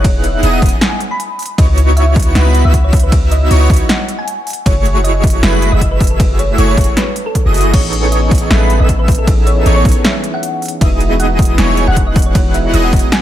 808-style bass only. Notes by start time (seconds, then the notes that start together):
Already playing: E1
0.43 E1
0.62 E1
1.58 C#2
2.35 C#2
2.65 C#2
3.51 C#2
3.70 C#2
4.66 F#1
5.43 F#1
5.73 F#1
6.58 F#1
6.77 F#1
7.46 F#1
7.74 A1
8.51 A1
8.80 A1
9.66 A1
9.85 A1
10.81 E1
11.58 E1
11.88 E1
12.74 E1
12.93 E1